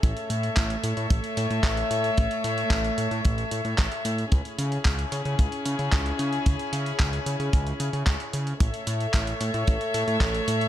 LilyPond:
<<
  \new Staff \with { instrumentName = "String section" } { \time 4/4 \key a \lydian \tempo 4 = 112 <a a' cis'' e''>1~ | <a a' cis'' e''>1 | <cis' e' gis'>1~ | <cis' e' gis'>1 |
<a a' cis'' e''>1 | }
  \new Staff \with { instrumentName = "Analog synth bass" } { \clef bass \time 4/4 \key a \lydian a,,16 r16 a,16 r16 a,,16 r16 a,16 a,16 a,,16 r16 a,16 a,16 a,,16 r16 a,16 r16 | a,,16 r16 a,16 r16 a,,16 r16 a,16 a,16 a,,16 r16 a,16 a,16 a,,16 r16 a,16 r16 | cis,16 r16 cis16 r16 cis,16 r16 cis16 cis16 cis,16 r16 cis16 cis16 cis,16 r16 cis16 r16 | cis,16 r16 cis16 r16 cis,16 r16 cis16 cis16 cis,16 r16 cis16 cis16 cis,16 r16 cis16 r16 |
a,,16 r16 a,16 r16 a,,16 r16 a,16 a,16 a,,16 r16 a,16 a,16 a,,16 r16 a,16 r16 | }
  \new DrumStaff \with { instrumentName = "Drums" } \drummode { \time 4/4 <hh bd>16 hh16 hh16 hh16 <hc hh bd>16 hh16 hh16 hh16 <hh bd>16 hh16 hh16 hh16 <hc hh bd>16 hh16 hh16 hh16 | <hh bd>16 hh16 hh16 hh16 <hc hh bd>16 hh16 hh16 hh16 <hh bd>16 hh16 hh16 hh16 <hc hh bd>16 hh16 hh16 hh16 | <hh bd>16 hh16 hh16 hh16 <hc hh bd>16 hh16 hh16 hh16 <hh bd>16 hh16 hh16 hh16 <hc hh bd>16 hh16 hh16 hh16 | <hh bd>16 hh16 hh16 hh16 <hc hh bd>16 hh16 hh16 hh16 <hh bd>16 hh16 hh16 hh16 <hc hh bd>16 hh16 hh16 hh16 |
<hh bd>16 hh16 hh16 hh16 <hc hh bd>16 hh16 hh16 hh16 <hh bd>16 hh16 hh16 hh16 <hc hh bd>16 hh16 hh16 hh16 | }
>>